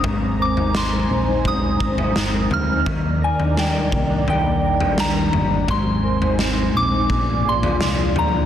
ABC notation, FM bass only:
X:1
M:4/4
L:1/8
Q:1/4=85
K:Eb
V:1 name="FM bass" clef=bass
A,,,3 B,,,2 A,,, G,,, D,, | E,,3 C,,2 B,,,2 G,,, | A,,,3 B,,, B,,, B,,, C,, D,, |]